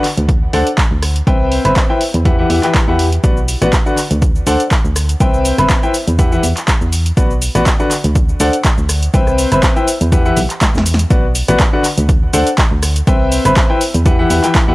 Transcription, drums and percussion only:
0.04 clap, open hi-hat
0.18 closed hi-hat
0.29 kick, closed hi-hat
0.53 open hi-hat
0.67 closed hi-hat
0.78 kick, clap, closed hi-hat
1.02 cross-stick, open hi-hat
1.16 closed hi-hat
1.27 kick, closed hi-hat
1.52 open hi-hat
1.65 cross-stick, closed hi-hat
1.76 kick, clap, closed hi-hat
2.01 open hi-hat
2.14 closed hi-hat
2.25 kick, closed hi-hat
2.50 open hi-hat
2.63 clap, closed hi-hat
2.75 kick, clap, closed hi-hat
2.99 open hi-hat
3.12 closed hi-hat
3.24 kick, closed hi-hat, cabasa
3.37 cabasa
3.48 open hi-hat, cabasa
3.62 cross-stick, closed hi-hat, cabasa
3.73 kick, clap, closed hi-hat, cabasa
3.86 cabasa
3.97 clap, open hi-hat, cabasa
4.11 closed hi-hat, cabasa
4.22 kick, closed hi-hat, cabasa
4.35 cabasa
4.47 open hi-hat, cabasa
4.60 closed hi-hat, cabasa
4.71 kick, clap, closed hi-hat, cabasa
4.85 cabasa
4.96 cross-stick, open hi-hat, cabasa
5.09 closed hi-hat, cabasa
5.20 kick, closed hi-hat, cabasa
5.34 cabasa
5.45 open hi-hat, cabasa
5.58 cross-stick, closed hi-hat, cabasa
5.70 kick, clap, closed hi-hat, cabasa
5.83 cabasa
5.94 open hi-hat, cabasa
6.08 closed hi-hat, cabasa
6.19 kick, closed hi-hat, cabasa
6.32 cabasa
6.43 open hi-hat, cabasa
6.57 clap, closed hi-hat, cabasa
6.68 kick, clap, closed hi-hat, cabasa
6.81 cabasa
6.93 open hi-hat, cabasa
7.06 closed hi-hat, cabasa
7.17 kick, closed hi-hat, cabasa
7.31 cabasa
7.42 open hi-hat, cabasa
7.55 cross-stick, closed hi-hat, cabasa
7.66 kick, clap, closed hi-hat, cabasa
7.80 cabasa
7.91 clap, open hi-hat, cabasa
8.04 closed hi-hat, cabasa
8.15 kick, closed hi-hat, cabasa
8.29 cabasa
8.40 open hi-hat, cabasa
8.53 closed hi-hat, cabasa
8.65 kick, clap, closed hi-hat, cabasa
8.78 cabasa
8.89 cross-stick, open hi-hat, cabasa
9.03 closed hi-hat, cabasa
9.14 kick, closed hi-hat, cabasa
9.27 cross-stick, cabasa
9.38 open hi-hat, cabasa
9.52 cross-stick, closed hi-hat, cabasa
9.63 kick, clap, closed hi-hat, cabasa
9.76 cabasa
9.88 open hi-hat, cabasa
10.01 closed hi-hat, cabasa
10.12 kick, closed hi-hat, cabasa
10.26 cabasa
10.37 open hi-hat, cabasa
10.50 clap, closed hi-hat, cabasa
10.61 kick, snare, clap, closed hi-hat, cabasa
10.75 snare, cabasa
10.86 open hi-hat, cabasa
10.94 snare
10.99 closed hi-hat, cabasa
11.10 kick, closed hi-hat, cabasa
11.35 open hi-hat, cabasa
11.48 cross-stick, closed hi-hat, cabasa
11.60 kick, clap, closed hi-hat, cabasa
11.84 clap, open hi-hat, cabasa
11.98 closed hi-hat, cabasa
12.09 kick, closed hi-hat, cabasa
12.33 open hi-hat, cabasa
12.47 closed hi-hat, cabasa
12.58 kick, clap, closed hi-hat, cabasa
12.83 cross-stick, open hi-hat, cabasa
12.96 closed hi-hat, cabasa
13.07 kick, closed hi-hat, cabasa
13.32 open hi-hat, cabasa
13.45 cross-stick, closed hi-hat, cabasa
13.56 kick, clap, closed hi-hat, cabasa
13.81 open hi-hat, cabasa
13.94 closed hi-hat, cabasa
14.06 kick, closed hi-hat, cabasa
14.30 open hi-hat, cabasa
14.44 clap, closed hi-hat, cabasa
14.55 kick, clap, closed hi-hat, cabasa

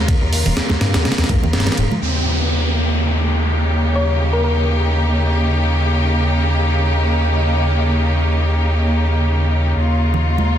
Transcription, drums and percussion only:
0.08 kick, ride
0.33 open hi-hat
0.46 ride, low conga
0.57 snare, ride
0.69 snare, high conga
0.81 snare, ride
0.94 snare, ride
1.05 snare, ride
1.12 snare, ride
1.18 snare, ride
1.24 snare, ride
1.29 kick, ride, high conga
1.44 low conga
1.53 snare, ride
1.60 snare, ride
1.67 snare, ride, low conga
1.72 snare, ride
1.78 ride
1.91 high conga
10.14 low conga
10.38 high conga

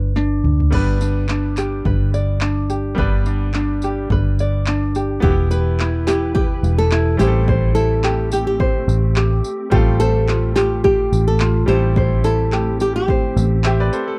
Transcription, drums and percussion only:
0.16 snare
0.44 mid tom
0.60 floor tom
0.73 kick, crash
1.01 tambourine
1.29 clap
1.57 clap, tambourine
1.85 kick
2.14 tambourine
2.41 clap
2.70 tambourine
2.98 kick
3.26 tambourine
3.54 clap
3.82 tambourine
4.10 kick
4.39 tambourine
4.66 clap
4.95 tambourine
5.23 kick
5.51 tambourine
5.79 clap
6.07 clap, tambourine
6.35 kick
6.64 tambourine
6.91 clap
7.20 tambourine
7.48 kick
7.76 tambourine
8.04 clap
8.32 tambourine
8.60 kick
8.89 tambourine
9.16 clap
9.44 tambourine
9.72 kick
10.00 tambourine
10.28 clap
10.56 clap, tambourine
10.84 kick
11.13 tambourine
11.40 clap
11.68 tambourine
11.96 kick
12.24 tambourine
12.52 clap
12.80 tambourine
13.08 kick
13.37 tambourine
13.64 clap
13.93 tambourine

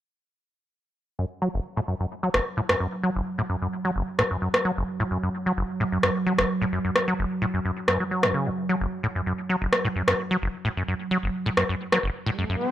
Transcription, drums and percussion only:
2.34 cross-stick
2.69 cross-stick
4.19 cross-stick
4.54 cross-stick
6.03 cross-stick
6.38 cross-stick
6.96 cross-stick
7.88 cross-stick
8.23 cross-stick
9.73 cross-stick
10.08 cross-stick
11.57 cross-stick
11.92 cross-stick

